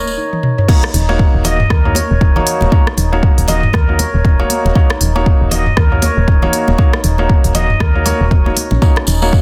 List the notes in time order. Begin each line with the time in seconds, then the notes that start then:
Already playing: D#1
0.07 tambourine
0.18 D#4
0.33 high tom
0.43 mid tom
0.58 C#5, mid tom
0.68 A#3 D#4 F#4 C#5, kick, crash, high conga
0.83 D#4, cross-stick, muted conga
0.94 D#1 D#4, open hi-hat, low conga
1.09 A#3 D#4 F#4 C#5, muted conga
1.19 kick
1.34 D#1
1.44 A#3 D#4 F#4 D#5, open hi-hat, muted conga, low conga
1.60 mid tom
1.70 D#2 A#4, kick, cross-stick, muted conga
1.85 A#3 D#4 F#4 C#5, mid tom
1.95 C#5, open hi-hat, muted conga, high conga
2.11 D#1
2.21 D#4, kick, muted conga
2.36 A#3 D#4 F#4 C#5, high conga, low conga
2.47 open hi-hat
2.61 D#1 C#5, muted conga, high conga
2.72 A#3 D#4 F#4 C#5, kick, high conga
2.87 D#4, cross-stick, muted conga
2.97 D#1 D#4, open hi-hat, low conga
3.12 A#3 D#4 F#4 C#5, muted conga
3.23 kick
3.38 D#1, open hi-hat
3.48 A#3 D#4 F#4 D#5, open hi-hat, muted conga, low conga
3.63 mid tom
3.73 D#2 A#4, kick, cross-stick, muted conga, high conga
3.89 A#3 D#4 F#4 C#5
3.99 C#5, open hi-hat, muted conga, high conga
4.14 D#1
4.25 D#4, kick, muted conga
4.39 A#3 D#4 F#4 C#5, high conga
4.50 open hi-hat, high conga
4.65 D#1 C#5, muted conga
4.75 A#3 D#4 F#4 C#5, kick, high conga
4.90 D#4, cross-stick, muted conga
5.01 D#1 D#4, open hi-hat, low conga
5.16 A#3 D#4 F#4 C#5, muted conga
5.26 kick
5.41 D#1
5.51 A#3 D#4 F#4 D#5, open hi-hat, muted conga, low conga
5.66 mid tom
5.77 D#2 A#4, kick, cross-stick, muted conga
5.92 A#3 D#4 F#4 C#5, mid tom
6.02 C#5, open hi-hat, muted conga, high conga
6.17 D#1
6.28 D#4, kick, muted conga
6.42 A#3 D#4 F#4 C#5, high conga, low conga
6.53 open hi-hat
6.68 D#1 C#5, muted conga, high conga
6.78 A#3 D#4 F#4 C#5, kick, high conga
6.93 D#4, cross-stick, muted conga
7.04 D#1 D#4, open hi-hat, low conga
7.18 A#3 D#4 F#4 C#5, muted conga
7.29 kick
7.44 D#1, open hi-hat
7.55 A#3 D#4 F#4 D#5, open hi-hat, muted conga, low conga
7.70 mid tom
7.80 D#2 A#4, kick, cross-stick, muted conga, high conga
7.95 A#3 D#4 F#4 C#5
8.06 A#3 D#4 F#4 C#5, open hi-hat, muted conga, high conga
8.21 D#1
8.31 C#5, kick, muted conga
8.46 A#3 D#4 F#4 C#5, high conga
8.57 open hi-hat, high conga
8.71 A#1 C#4, muted conga
8.82 A#3 D#4 F#4 C#5, kick, tambourine, high conga
8.96 D#4, cross-stick, muted conga
9.07 D#1 D#4, open hi-hat, tambourine, low conga
9.22 A#3 D#4 F#4 C#5, tambourine, muted conga
9.33 kick, tambourine